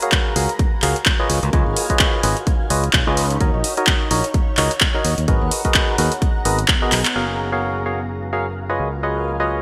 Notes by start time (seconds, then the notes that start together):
Already playing: F#4 G#4 A#4 A#5
0.02 F#4 G#4 A#4 C#5 F5, closed hi-hat
0.12 kick, clap, closed hi-hat
0.26 G#5
0.36 C#2 F#4 G#4 A#4 C#5 F5, open hi-hat
0.49 closed hi-hat
0.59 kick, closed hi-hat
0.82 C#2 F#4 G#4 A#4 C#5 F5, clap, open hi-hat
0.96 closed hi-hat
1.06 kick, clap, closed hi-hat
1.20 F4 G#4 B4 C#5 D#5
1.30 C#2 D#4, open hi-hat
1.43 C#2 C#5, closed hi-hat
1.53 C#2 F4 G#4 B4 C#5 D#5, kick, closed hi-hat
1.66 G#1
1.76 open hi-hat
1.90 F4 G#4 B4 C#5 D#5, kick, closed hi-hat
1.99 kick, clap, closed hi-hat
2.23 G#1 F4 G#4 B4 C#5 D#5 B5, open hi-hat
2.37 closed hi-hat
2.47 kick, closed hi-hat
2.70 C#2 F4 G#4 B4 C#5 D#5, open hi-hat
2.84 closed hi-hat
2.93 B1, kick, clap, closed hi-hat
3.07 C#2 F4 G#4 B4 C#5 D#5
3.17 open hi-hat
3.31 closed hi-hat
3.41 D#2 D#4 F#4 A#4 C#5 D#5, kick, closed hi-hat
3.54 A#1
3.60 F#5, open hi-hat
3.77 D#4 F#4 A#4 C#5 D#5, closed hi-hat
3.87 kick, clap, closed hi-hat
4.11 A#1 D#4 F#4 A#4 C#5 D#5, open hi-hat
4.24 A#5, closed hi-hat
4.34 kick, closed hi-hat
4.57 C#2 D#4 F#4 A#4 C#5 D#5, clap, open hi-hat
4.71 closed hi-hat
4.81 kick, clap, closed hi-hat
4.95 D#4 F#4 A#4 C#5 D#5
5.05 D#2, open hi-hat
5.18 D#2, closed hi-hat
5.28 G#1 B3 F#4 G#4 A#4 B4 D#5, kick, closed hi-hat
5.41 D#2 G#4
5.51 open hi-hat
5.65 F#4 G#4 A#4 B4 D#5, kick, closed hi-hat
5.74 kick, clap, closed hi-hat
5.98 D#2 F#4 G#4 A#4 B4 D#5, open hi-hat
6.12 closed hi-hat
6.22 kick, closed hi-hat
6.45 G#1 F#4 G#4 A#4 B4 D#5, open hi-hat
6.59 closed hi-hat
6.68 kick, clap, closed hi-hat
6.82 F#4 G#4 A#4 B4 D#5
6.92 B1, clap, open hi-hat
7.05 clap, closed hi-hat
7.16 F#1 F#4 G#4 A#4 C#5 F5 F6
7.30 A#4 F5
7.52 F#4 G#4 A#4 C#5 F5
7.86 F#4 G#4 A#4 C#5 F5
7.90 G#5
8.33 F#4 G#4 A#4 C#5 F5
8.70 F4 G#4 B4 C#5 D#5
8.79 C#2 F4
9.03 F4 G#4 B4 C#5 D#5
9.40 F4 G#4 B4 C#5 D#5